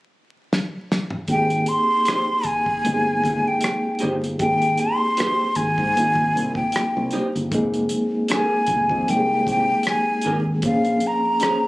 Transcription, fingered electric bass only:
1.29 G#1
2.86 G1
3.25 G1
4.03 G1
4.41 G#1
5.57 G#1
5.79 G#2
5.97 G#1
6.36 C2
6.76 muted fingered electric bass stroke
6.97 C2
7.35 G1
7.53 F1
8.69 F1
8.91 F2
9.09 C2
9.48 C2
10.26 G#1
10.64 A#1

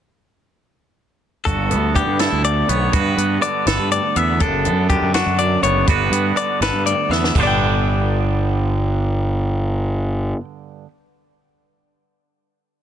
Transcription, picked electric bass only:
1.47 G1
1.71 D2
2.07 G2
2.32 D2
2.69 B1
2.93 G2
3.17 G2
3.66 G1
3.79 G2
4.16 E2
4.40 F#1
4.66 F#2
5.02 F#2
5.26 F#2
5.63 F#1
5.88 G1
6.11 G2
6.61 G1
6.73 G2
7.09 E2
7.35 G1

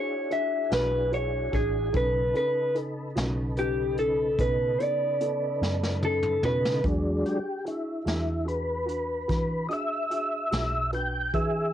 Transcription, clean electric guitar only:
Already playing: C#5
0.32 E5
0.74 B4
1.14 C#5
1.55 G#4
1.97 B4
2.37 B4
3.59 G4
3.99 A4
4.40 B4
4.82 D5
6.05 A4
6.45 B4

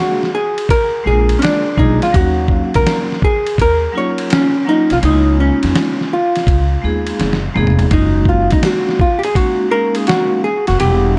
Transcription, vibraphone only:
Already playing: G#3 A#3 D4 G#4 F5
1.04 G#3 A#3 D4 F4 A#4
1.76 G#3 A#3 D4 F4 G#4
2.12 F#3 A#3 C#4 D#4 F5
3.92 F#3 A#3 C#4 D#4 F4
4.65 F#3 A#3 C#4 D#4 F4
5.01 G#3 A#3 B3 D#4 E4
5.11 F4
6.82 G#3 A#3 B3 D#4 G#4
7.54 G#3 A#3 B3 D#4 G#4
7.90 G#3 A#3 C#4 D#4 F4
8.00 F#4
9.34 G#3 A#3 C#4 D#4 F#4
9.71 G#3 A#3 C#4 D#4 F5
10.79 G3 B3 D4 E4 F#5

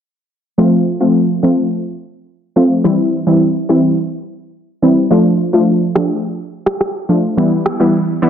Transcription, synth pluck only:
0.58 F3 A3 C4 F4
1.00 F3 A3 C4 F4
1.43 F3 A3 C4 F4
2.56 F3 A3 C4 F4
2.84 E3 G3 C4 E4
3.27 E3 G3 C4 E4
3.69 E3 G3 C4 E4
4.82 E3 G3 C4 E4
5.11 F3 A3 D4 F4
5.53 F3 A3 D4 F4
5.96 F3 A3 D4 F4
7.09 F3 A3 D4 F4
7.37 E3 G3 B3 E4
7.80 E3 G3 B3 E4
8.22 E3 G3 B3 E4

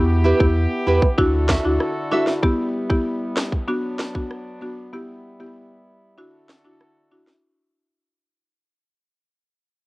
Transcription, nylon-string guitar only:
0.24 E4 G4 B4
0.87 E4 G4 B4
1.02 muted nylon-string guitar stroke
1.49 F#4 A4 E5
2.11 F#4 A4 E5
2.27 muted nylon-string guitar stroke

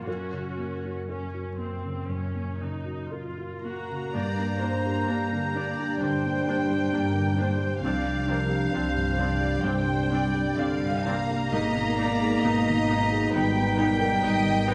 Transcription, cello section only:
0.07 F#2
3.64 A#3
6.01 G3
7.83 F3
9.64 G3
10.58 D3
11.05 A#3
13.34 G3

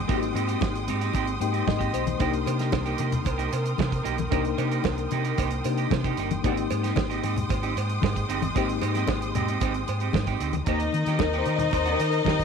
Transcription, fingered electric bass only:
0.09 G#1
0.34 G#2
0.62 G#1
0.88 G#2
1.14 G#1
1.40 G#2
1.68 G#2
1.94 B1
2.20 C2
2.46 C3
2.73 C2
2.99 C3
3.26 C2
3.53 C3
3.79 C3
4.06 B1
4.32 C2
4.58 C3
4.85 C2
5.12 C3
5.38 C2
5.65 C3
5.92 C3
6.18 G1
6.44 G#1
6.71 G#2
6.97 G#1
7.23 G#2
7.51 G#1
7.77 G#2
8.03 G#2
8.29 G1
8.56 G#1
8.82 G#2
9.08 G#1
9.35 G#2
9.61 G#1
9.88 G#2
10.14 G#2
10.40 D2
10.67 D#2
10.94 D#3
11.07 D#3
11.20 D#2
11.47 D#3
11.73 D#2
12.00 D#3
12.26 D#3

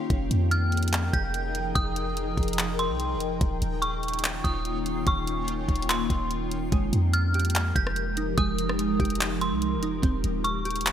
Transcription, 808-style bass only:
0.10 F1
0.31 F2
1.13 F1
1.76 F1
2.37 F1
2.89 C2
3.15 F1
3.41 D#1
3.62 D#1
4.44 D#1
5.07 D#1
5.69 D#1
6.10 D#1
6.72 F1
6.93 F2
7.76 F1
8.38 F1
9.00 F1
9.52 C2
9.77 F1
10.03 D#1
10.24 D#1

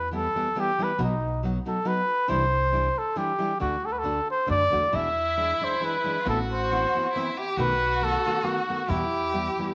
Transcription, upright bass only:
Already playing: E2
0.99 B1
2.30 C2
3.61 D2
4.49 F#2
4.73 E2
4.93 E2
6.27 A1
7.57 B1
8.89 E2

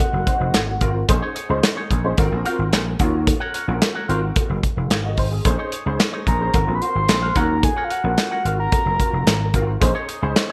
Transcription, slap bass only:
0.13 F#1
0.40 F1
0.54 G#1
0.81 G#1
1.09 A#1
1.50 C#2
1.91 A#1
2.18 G#1
2.32 A#1
2.59 G#1
2.72 A#1
3.00 D#2
3.68 A#1
4.09 G#1
4.50 F#1
4.77 F1
4.91 G#1
5.18 G#1
5.45 A#1
5.86 C#2
6.27 A#1
6.54 G#1
6.68 A#1
6.95 G#1
7.09 A#1
7.36 D#2
8.04 A#1
8.45 G#1
8.86 F#1
9.13 F1
9.27 G#1
9.54 G#1
9.82 A#1
10.22 C#2

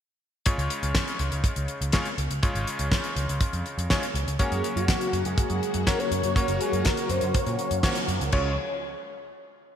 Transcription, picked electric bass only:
0.58 C#2
0.83 C#2
1.20 C#2
1.32 C#2
1.57 C#2
1.81 C#2
2.18 C#2
2.30 C#2
2.55 G#1
2.79 C#2
3.16 C#2
3.29 C#2
3.53 F2
3.78 F2
4.15 C#2
4.27 C#2
4.52 F#2
4.76 F#2
5.13 F#2
5.26 F#2
5.50 F#2
5.75 F#2
6.11 F#2
6.24 F#2
6.48 F#1
6.73 F#2
7.10 F#2
7.22 F#2
7.47 A#2
7.71 F#2
8.08 F#2
8.20 C#2
8.33 C#2

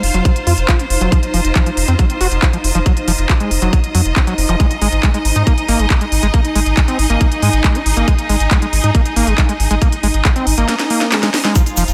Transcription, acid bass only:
0.14 F#3
0.25 F#3
0.47 F4
0.69 F4
0.79 C4
1.01 F#3
1.12 F3
1.34 F3
1.55 F3
1.66 F3
1.88 C4
1.99 F#3
2.21 F#4
2.42 F4
2.53 F3
2.75 F3
2.86 F#3
3.08 F3
3.29 F4
3.40 G#3
3.62 F#3
3.73 F#3
3.95 F#3
4.16 C4
4.27 F#3
4.49 F3
4.60 G#3
4.82 G#3
5.03 G#3
5.14 G#3
5.36 D#4
5.47 A#3
5.69 A#3
5.79 G#3
5.90 G#3
6.01 G#3
6.23 G#3
6.34 A#3
6.56 G#3
6.77 G#3
6.88 C4
7.10 A#3
7.21 A#3
7.42 G#3
7.64 G#3
7.75 D#4
7.97 A#3
8.08 G#3
8.29 G#3
8.51 G#3
8.62 G#3
8.84 D#4
8.95 A#3
9.16 A#3
9.27 G#3
9.38 G#3
9.49 G#3
9.71 G#3
9.82 A#3
10.03 G#3
10.25 G#3
10.36 C4
10.58 A#3
10.69 A#3
10.90 A#3
11.12 G#3
11.23 G#3
11.45 G#3
11.56 F3
11.77 F3

